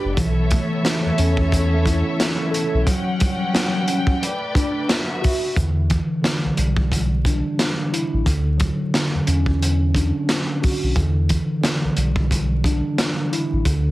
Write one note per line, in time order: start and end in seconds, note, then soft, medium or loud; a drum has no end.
0.00 0.16 A3 medium
0.00 0.17 D4 medium
0.00 0.16 G4 medium
0.00 0.16 B4 medium
0.00 0.16 D5 medium
0.00 0.15 G5 medium
0.04 0.14 F#1 medium
0.16 0.61 B1 loud
0.16 0.81 E3 medium
0.16 2.84 B3 medium
0.16 2.84 A4 medium
0.16 2.84 C#5 medium
0.16 2.84 E5 medium
0.16 kick loud
0.16 closed hi-hat medium
0.51 2.53 A3 medium
0.51 kick medium
0.51 closed hi-hat medium
0.82 2.86 E3 medium
0.82 snare loud
0.82 snare medium
0.82 closed hi-hat medium
1.05 1.11 E2 medium
1.18 2.02 E2 loud
1.18 2.87 C#4 loud
1.18 closed hi-hat medium
1.37 kick medium
1.52 kick medium
1.52 closed hi-hat loud
1.85 2.86 E4 medium
1.85 kick loud
1.85 closed hi-hat medium
2.20 snare loud
2.20 snare medium
2.20 closed hi-hat medium
2.51 2.86 A4 medium
2.51 closed hi-hat medium
2.74 2.84 B1 medium
2.87 4.21 E3 medium
2.87 3.52 F#3 medium
2.87 4.21 C#4 medium
2.87 4.21 F#5 medium
2.87 4.88 G5 medium
2.87 kick loud
2.87 closed hi-hat medium
3.19 4.21 G3 medium
3.19 kick loud
3.19 closed hi-hat medium
3.53 4.21 F#3 medium
3.53 snare loud
3.53 snare medium
3.53 closed hi-hat loud
3.87 4.21 C#4 medium
3.87 closed hi-hat medium
4.07 kick loud
4.22 4.89 A3 medium
4.22 4.89 B4 medium
4.22 4.88 D5 medium
4.22 closed hi-hat loud
4.55 4.89 D4 medium
4.55 kick loud
4.55 closed hi-hat medium
4.88 5.55 D3 medium
4.88 5.55 B3 medium
4.88 5.55 F#4 medium
4.88 5.55 E5 medium
4.88 snare loud
4.88 snare medium
4.88 closed hi-hat medium
5.22 5.56 F#4 medium
5.22 kick medium
5.22 open hi-hat medium
5.56 6.00 E2 loud
5.56 6.21 D3 medium
5.56 kick loud
5.56 closed hi-hat medium
5.89 7.92 E3 medium
5.89 kick medium
5.89 closed hi-hat medium
6.22 8.24 D3 medium
6.22 snare loud
6.22 snare medium
6.22 closed hi-hat medium
6.45 6.50 B1 soft
6.56 7.42 B1 medium
6.56 8.26 G3 medium
6.56 closed hi-hat medium
6.77 kick medium
6.92 kick medium
6.92 closed hi-hat medium
7.25 8.27 D4 medium
7.25 kick medium
7.25 closed hi-hat medium
7.59 snare loud
7.59 snare medium
7.59 closed hi-hat medium
7.93 8.26 E4 medium
7.93 closed hi-hat medium
8.13 8.24 A1 medium
8.26 8.70 D2 loud
8.26 8.93 D3 medium
8.26 kick loud
8.26 closed hi-hat medium
8.58 10.61 F#3 medium
8.58 kick medium
8.58 closed hi-hat medium
8.94 10.95 D3 medium
8.94 snare loud
8.94 snare medium
8.94 closed hi-hat medium
9.14 9.20 E2 soft
9.27 10.11 E2 medium
9.27 10.95 C#4 medium
9.27 closed hi-hat medium
9.46 kick medium
9.62 closed hi-hat medium
9.94 10.96 D4 medium
9.94 kick medium
9.94 closed hi-hat medium
10.29 snare loud
10.29 snare medium
10.29 closed hi-hat medium
10.62 10.96 F#4 medium
10.62 kick medium
10.62 open hi-hat medium
10.83 10.93 B1 medium
10.96 11.39 E2 loud
10.96 11.60 D3 medium
10.96 kick loud
10.96 closed hi-hat medium
11.29 13.31 E3 medium
11.29 kick medium
11.29 closed hi-hat medium
11.61 13.64 D3 medium
11.61 snare loud
11.61 snare medium
11.61 closed hi-hat medium
11.84 11.89 B1 soft
11.96 12.81 B1 medium
11.96 13.65 G3 medium
11.96 closed hi-hat medium
12.16 kick medium
12.31 kick medium
12.31 closed hi-hat medium
12.64 13.66 D4 medium
12.64 kick loud
12.64 closed hi-hat medium
12.98 snare loud
12.98 snare medium
12.98 closed hi-hat medium
13.32 13.66 E4 medium
13.32 closed hi-hat medium
13.53 13.63 A1 medium
13.65 13.91 D2 loud
13.65 13.91 D3 medium
13.65 kick loud
13.65 closed hi-hat medium